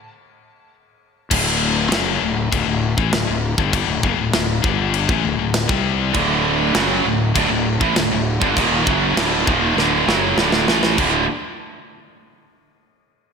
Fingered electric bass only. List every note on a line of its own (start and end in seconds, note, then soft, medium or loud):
1.31 1.88 D1 loud
1.92 2.20 F#1 loud
2.22 2.50 D1 medium
2.53 2.67 D1 medium
2.68 2.96 D1 medium
2.97 3.12 A1 loud
3.13 3.27 D1 loud
3.28 3.56 D1 medium
3.58 3.86 G1 loud
3.88 4.02 D1 loud
4.04 4.18 F#1 loud
4.19 4.33 D1 medium
4.34 4.62 D1 medium
4.64 5.06 G1 medium
5.09 5.23 A1 loud
5.24 5.38 D1 medium
5.39 5.67 D1 medium
5.69 6.11 C2 loud
6.15 6.71 D1 medium
6.76 7.03 F#1 loud
7.06 7.34 D1 medium
7.36 7.49 D1 loud
7.50 7.78 D1 medium
7.81 7.95 A1 medium
7.95 8.10 D1 medium
8.10 8.39 D1 medium
8.42 8.56 G1 medium
8.57 8.85 D#1 loud
8.87 9.15 F#1 medium
9.17 9.45 D1 loud
9.47 9.76 D#1 loud
9.77 10.05 D1 medium
10.08 10.36 F#1 loud
10.37 10.66 D1 loud
10.69 10.97 A1 medium
10.98 11.27 D1 loud